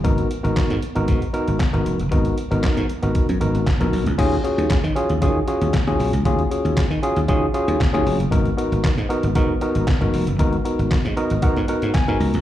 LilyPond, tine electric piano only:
\new Staff \with { instrumentName = "Tine electric piano" } { \time 4/4 \key ees \minor \tempo 4 = 116 << { r1 | r1 | r1 | r1 |
r1 | r4. ees''8 ges''8 ges''8 aes''8 bes''8 | } \\ { <ces' ees' ges' bes'>8 r16 <ces' ees' ges' bes'>8 r8 <ces' ees' ges' bes'>8 r16 <ces' ees' ges' bes'>8 r16 <ces' ees' ges' bes'>8 r16 | <ces' ees' ges' bes'>8 r16 <ces' ees' ges' bes'>8 r8 <ces' ees' ges' bes'>8 r16 <ces' ees' ges' bes'>8 r16 <ces' ees' ges' bes'>8 r16 | <des' f' ges' aes'>16 r16 <des' f' ges' aes'>8 r8 <des' f' ges' aes'>16 r16 <des' f' ges' aes'>16 r16 <des' f' ges' aes'>8 r16 <des' f' ges' aes'>8 r16 | <des' f' ges' aes'>16 r16 <des' f' ges' aes'>8 r8 <des' f' ges' aes'>16 r16 <des' f' ges' aes'>16 r16 <des' f' ges' aes'>8 r16 <des' f' ges' aes'>8 r16 |
<ces' ees' ges' bes'>16 r16 <ces' ees' ges' bes'>8 r8 <ces' ees' ges' bes'>16 r16 <ces' ees' ges' bes'>16 r16 <ces' ees' ges' bes'>8 r16 <ces' ees' ges' bes'>8 r16 | <ces' ees' ges' bes'>16 r16 <ces' ees' ges' bes'>8 r8 <ces' ees' ges' bes'>16 r16 <ces' ees' ges' bes'>16 r16 <ces' ees' ges' bes'>8 r16 <ces' ees' ges' bes'>8 r16 | } >> }